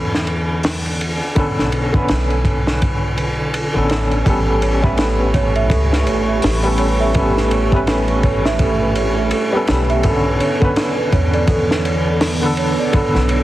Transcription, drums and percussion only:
0.15 snare
0.27 ride
0.63 snare, open hi-hat
0.86 ride
1.01 ride
1.36 kick, ride
1.59 snare
1.72 ride
1.94 kick
2.08 snare, ride
2.30 ride
2.45 kick, ride
2.67 snare
2.82 kick, ride
3.18 ride
3.54 ride
3.90 snare, ride
4.11 ride
4.26 kick, ride
4.62 ride
4.84 kick
4.97 snare, ride
5.34 kick, ride
5.55 ride
5.70 kick, ride
5.93 snare
6.07 ride
6.42 snare, open hi-hat
6.64 ride
6.78 ride
7.14 kick, ride
7.37 snare
7.51 ride
7.72 kick
7.87 snare, ride
8.08 ride
8.23 kick, ride
8.45 snare
8.59 kick, ride
8.95 ride
9.31 ride
9.67 snare, ride
9.90 ride
10.03 kick, ride
10.40 ride
10.62 kick
10.76 snare, ride
11.12 kick, ride
11.33 ride
11.47 kick, ride
11.71 snare
11.85 ride
12.21 snare, open hi-hat
12.43 ride
12.57 ride
12.93 kick, ride
13.15 snare
13.29 ride

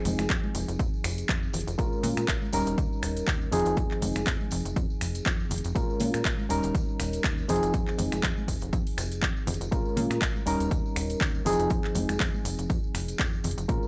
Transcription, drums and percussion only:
0.05 open hi-hat, tambourine, high conga, low conga, shaker
0.19 finger snap, closed hi-hat, tambourine, high conga, shaker
0.30 kick, clap, closed hi-hat, shaker
0.43 tambourine, high conga
0.55 open hi-hat, tambourine, shaker
0.68 closed hi-hat, tambourine, shaker
0.79 kick, closed hi-hat, tambourine, shaker
0.93 tambourine
1.04 finger snap, open hi-hat, tambourine, shaker
1.18 closed hi-hat, tambourine, shaker
1.29 kick, clap, closed hi-hat, tambourine, shaker
1.43 tambourine
1.53 open hi-hat, tambourine, low conga, shaker
1.61 closed hi-hat
1.68 closed hi-hat, tambourine, shaker
1.79 kick, closed hi-hat, tambourine, shaker
1.92 tambourine
2.04 open hi-hat, tambourine, high conga, low conga, shaker
2.17 finger snap, closed hi-hat, tambourine, high conga, shaker
2.28 kick, clap, closed hi-hat, tambourine, shaker
2.42 tambourine, high conga
2.52 open hi-hat, tambourine, shaker
2.67 closed hi-hat, tambourine, shaker
2.78 kick, closed hi-hat, tambourine, shaker
2.93 tambourine
3.03 finger snap, open hi-hat, tambourine, shaker
3.17 closed hi-hat, tambourine, shaker
3.27 kick, clap, closed hi-hat, tambourine, shaker
3.41 tambourine
3.52 open hi-hat, tambourine, low conga, shaker
3.59 closed hi-hat
3.65 closed hi-hat, tambourine, shaker
3.77 kick, closed hi-hat, tambourine, shaker
3.91 clap, tambourine
4.01 open hi-hat, tambourine, high conga, low conga, shaker
4.15 finger snap, closed hi-hat, tambourine, high conga, shaker
4.26 kick, clap, closed hi-hat, tambourine, shaker
4.41 tambourine, high conga
4.51 open hi-hat, tambourine, shaker
4.65 closed hi-hat, tambourine, shaker
4.76 kick, closed hi-hat, tambourine, shaker
4.90 tambourine
5.01 finger snap, open hi-hat, tambourine, shaker
5.15 closed hi-hat, tambourine, shaker
5.25 kick, clap, closed hi-hat, tambourine, shaker
5.40 tambourine
5.50 open hi-hat, tambourine, low conga, shaker
5.58 closed hi-hat
5.64 closed hi-hat, tambourine, shaker
5.75 kick, closed hi-hat, tambourine, shaker
5.90 tambourine
6.00 open hi-hat, tambourine, high conga, low conga, shaker
6.14 finger snap, closed hi-hat, tambourine, high conga, shaker
6.25 kick, clap, closed hi-hat, tambourine, shaker
6.38 tambourine, high conga
6.50 open hi-hat, tambourine, shaker
6.63 closed hi-hat, tambourine, shaker
6.75 kick, closed hi-hat, tambourine, shaker
6.88 tambourine
6.99 finger snap, open hi-hat, tambourine, shaker
7.13 closed hi-hat, tambourine, shaker
7.24 kick, clap, closed hi-hat, tambourine, shaker
7.38 tambourine
7.49 open hi-hat, tambourine, low conga, shaker
7.56 closed hi-hat
7.63 closed hi-hat, tambourine, shaker
7.74 kick, closed hi-hat, tambourine, shaker
7.88 clap, tambourine
7.99 open hi-hat, tambourine, high conga, low conga, shaker
8.12 finger snap, closed hi-hat, tambourine, high conga, shaker
8.23 kick, clap, closed hi-hat, tambourine, shaker
8.37 tambourine, high conga
8.48 kick, open hi-hat, tambourine, shaker
8.61 closed hi-hat, tambourine, shaker
8.73 kick, closed hi-hat, tambourine, shaker
8.86 open hi-hat, tambourine
8.98 finger snap, open hi-hat, tambourine, shaker
9.12 closed hi-hat, tambourine, shaker
9.22 kick, clap, closed hi-hat, tambourine, shaker
9.36 tambourine
9.47 open hi-hat, tambourine, low conga, shaker
9.54 closed hi-hat
9.61 closed hi-hat, tambourine, shaker
9.72 kick, closed hi-hat, tambourine, shaker
9.85 tambourine
9.97 open hi-hat, tambourine, high conga, low conga, shaker
10.11 finger snap, closed hi-hat, tambourine, high conga, shaker
10.22 kick, clap, closed hi-hat, tambourine, shaker
10.36 tambourine, high conga
10.47 open hi-hat, tambourine, shaker
10.60 closed hi-hat, tambourine, shaker
10.71 kick, closed hi-hat, tambourine, shaker
10.86 tambourine
10.96 finger snap, open hi-hat, tambourine, shaker
11.10 closed hi-hat, tambourine, shaker
11.21 kick, clap, closed hi-hat, tambourine, shaker
11.35 tambourine
11.46 open hi-hat, tambourine, low conga, shaker
11.53 closed hi-hat
11.59 closed hi-hat, tambourine, shaker
11.70 kick, closed hi-hat, tambourine, shaker
11.84 clap, tambourine
11.95 open hi-hat, tambourine, high conga, low conga, shaker
12.09 finger snap, closed hi-hat, tambourine, high conga, shaker
12.20 kick, clap, closed hi-hat, tambourine, shaker
12.34 tambourine, high conga
12.45 open hi-hat, tambourine, shaker
12.59 closed hi-hat, tambourine, shaker
12.70 kick, closed hi-hat, tambourine, shaker
12.84 tambourine
12.95 finger snap, open hi-hat, tambourine, shaker
13.08 closed hi-hat, tambourine, shaker
13.19 kick, clap, closed hi-hat, tambourine, shaker
13.33 tambourine
13.44 open hi-hat, tambourine, low conga, shaker
13.51 closed hi-hat
13.58 closed hi-hat, tambourine, shaker
13.69 kick, closed hi-hat, tambourine, shaker
13.83 tambourine

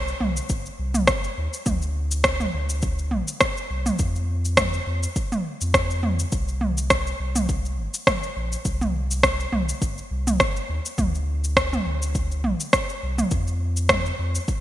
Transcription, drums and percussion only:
0.08 shaker
0.21 mid tom
0.37 shaker
0.49 kick, shaker
0.66 shaker
0.94 mid tom, shaker
1.07 kick, cross-stick, shaker
1.24 shaker
1.53 shaker
1.66 kick, mid tom, shaker
1.82 shaker
2.11 shaker
2.24 kick, cross-stick, shaker
2.40 mid tom, shaker
2.70 shaker
2.82 kick, shaker
2.99 shaker
3.11 mid tom
3.28 shaker
3.41 kick, cross-stick, shaker
3.57 shaker
3.86 mid tom, shaker
3.99 kick, shaker
4.16 shaker
4.45 shaker
4.57 kick, cross-stick, mid tom, shaker
4.74 shaker
5.03 shaker
5.16 kick, shaker
5.32 mid tom, shaker
5.61 shaker
5.74 kick, cross-stick, shaker
5.91 shaker
6.03 mid tom
6.19 shaker
6.32 kick, shaker
6.48 shaker
6.61 mid tom
6.78 shaker
6.90 kick, cross-stick, shaker
7.07 shaker
7.36 mid tom, shaker
7.49 kick, shaker
7.65 shaker
7.94 shaker
8.07 kick, cross-stick, mid tom, shaker
8.23 shaker
8.52 shaker
8.65 kick, shaker
8.81 mid tom, shaker
9.11 shaker
9.23 kick, cross-stick, shaker
9.40 shaker
9.53 mid tom
9.69 shaker
9.82 kick, shaker
9.98 shaker
10.27 mid tom, shaker
10.40 kick, cross-stick, shaker
10.56 shaker
10.86 shaker
10.98 kick, mid tom, shaker
11.15 shaker
11.44 shaker
11.57 kick, cross-stick, shaker
11.73 mid tom, shaker
12.02 shaker
12.15 kick, shaker
12.31 shaker
12.44 mid tom
12.60 shaker
12.73 kick, cross-stick, shaker
12.89 shaker
13.18 mid tom, shaker
13.31 kick, shaker
13.48 shaker
13.77 shaker
13.89 kick, cross-stick, mid tom, shaker
14.06 shaker
14.35 shaker
14.48 kick, shaker

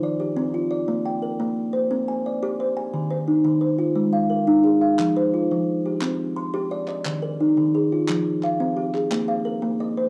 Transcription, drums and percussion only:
4.99 clap
6.01 clap
6.88 clap
7.05 clap
8.08 clap
8.43 clap
8.95 clap
9.12 clap

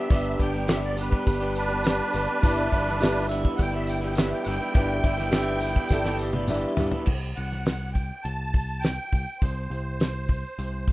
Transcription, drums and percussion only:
0.10 kick, open hi-hat, tambourine
0.39 kick, open hi-hat
0.68 snare, open hi-hat, tambourine
0.97 open hi-hat, tambourine
1.12 kick
1.27 kick, open hi-hat, tambourine
1.55 open hi-hat, tambourine
1.84 snare, open hi-hat, tambourine
2.14 open hi-hat, tambourine
2.42 kick, open hi-hat, tambourine
2.72 kick, open hi-hat
2.89 snare
3.01 snare, open hi-hat, tambourine
3.29 open hi-hat, tambourine
3.45 kick
3.58 kick, open hi-hat, tambourine
3.87 open hi-hat, tambourine
4.15 snare, open hi-hat, tambourine
4.44 open hi-hat, tambourine
4.74 kick, open hi-hat
5.04 kick, open hi-hat
5.19 snare
5.32 snare, open hi-hat, tambourine
5.60 open hi-hat, tambourine
5.76 kick
5.89 kick, snare, tambourine
6.05 snare
6.19 tambourine
6.33 high tom
6.48 mid tom, tambourine
6.77 floor tom, tambourine
6.92 floor tom
7.06 kick, crash
7.37 open hi-hat
7.52 snare
7.66 snare, open hi-hat
7.95 kick, open hi-hat
8.25 open hi-hat
8.54 kick, open hi-hat
8.84 snare, open hi-hat
9.12 kick, open hi-hat
9.42 kick, open hi-hat
9.71 open hi-hat
10.00 snare, open hi-hat
10.28 kick, open hi-hat
10.59 open hi-hat
10.87 kick, open hi-hat

